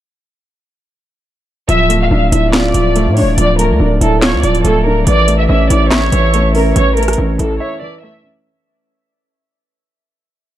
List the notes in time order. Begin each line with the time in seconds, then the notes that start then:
1.69 D1 F3 E5, closed hi-hat
1.89 A3, closed hi-hat
2.01 F5
2.11 D1 D4 F5
2.32 D1 E4 E5, closed hi-hat
2.53 F4 D5, snare, clap, closed hi-hat
2.74 D1 F3, closed hi-hat
2.96 A3, closed hi-hat
3.07 A2
3.17 D4 C#5, open hi-hat
3.22 D1
3.38 D1 F3 D5, closed hi-hat
3.59 A3 A#4, closed hi-hat
3.70 D2
3.80 D1 D4
4.01 D1 E4 A4, closed hi-hat
4.22 F4 C#5, snare, clap, closed hi-hat
4.33 D2
4.43 D1 F3 D5, closed hi-hat
4.55 closed hi-hat
4.64 D1 A3 A4, closed hi-hat
4.86 D4 A#4
5.07 A1 E3 D5, closed hi-hat
5.27 A3, closed hi-hat
5.39 E5
5.49 A1 C#4 E5
5.70 A1 E4 D5, closed hi-hat
5.91 C#5 E5, snare, clap, closed hi-hat
6.12 A1 E3, closed hi-hat
6.34 A3, closed hi-hat
6.55 C#4 A#4, open hi-hat
6.75 A1 E3 C#5, closed hi-hat
6.97 A3 A#4, closed hi-hat
7.03 closed hi-hat
7.08 cross-stick, closed hi-hat
7.13 closed hi-hat
7.18 A1 C#4
7.39 A1 E4 A4, closed hi-hat
7.60 C#5 E5
7.81 E3 D5
8.03 A3 E5
8.24 C#4